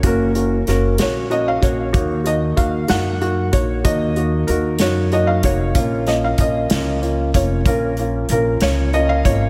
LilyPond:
<<
  \new Staff \with { instrumentName = "Felt piano" } { \time 6/8 \key ees \minor \tempo 4. = 63 bes'4 bes'8 des''8 ees''16 f''16 des''8~ | des''8 ees''8 f''8 ges''4 des''8 | ees''4 bes'8 des''8 ees''16 f''16 des''8~ | des''8 ees''16 f''16 ees''4 r8 des''8 |
bes'4 bes'8 des''8 ees''16 f''16 des''8 | }
  \new Staff \with { instrumentName = "Upright piano" } { \time 6/8 \key ees \minor <bes des' ges'>8 <bes des' ges'>8 <bes des' ges'>8 <bes des' ges'>8 <bes des' ges'>8 <bes des' ges'>8 | <bes ees' ges'>8 <bes ees' ges'>8 <bes ees' ges'>8 <bes ees' ges'>8 <bes ees' ges'>8 <bes ees' ges'>8 | <bes ees' ges'>8 <bes ees' ges'>8 <bes ees' ges'>8 <bes ees' ges'>8 <bes ees' ges'>8 <bes ees' ges'>8 | <bes des' f'>8 <bes des' f'>8 <bes des' f'>8 <bes des' f'>8 <bes des' f'>8 <bes des' f'>8 |
<bes des' f'>8 <bes des' f'>8 <bes des' f'>8 <bes des' f'>8 <bes des' f'>8 <bes des' f'>8 | }
  \new Staff \with { instrumentName = "Upright bass" } { \clef bass \time 6/8 \key ees \minor ges,,4 ges,,8 r4 bes,,8 | ees,4 ees,8 ges,4 bes,,8 | ees,4 ees,8 ges,4 f,,8 | bes,,4 bes,,8 des,4 f,,8 |
bes,,4 bes,,8 des,4 aes,,8 | }
  \new DrumStaff \with { instrumentName = "Drums" } \drummode { \time 6/8 <hh bd>8 hh8 <hh sn>8 <hh sn>8 hh8 <hh bd>8 | <hh bd>8 hh8 <hh bd>8 <hh sn>8 hh8 <hh bd>8 | <hh bd>8 hh8 hh8 <hh sn>8 hh8 <hh bd>8 | <hh bd>8 <hh sn>8 <hh bd>8 <hh sn>8 hh8 <hh bd>8 |
<hh bd>8 hh8 hh8 <hh sn>8 hh8 <hh bd>8 | }
>>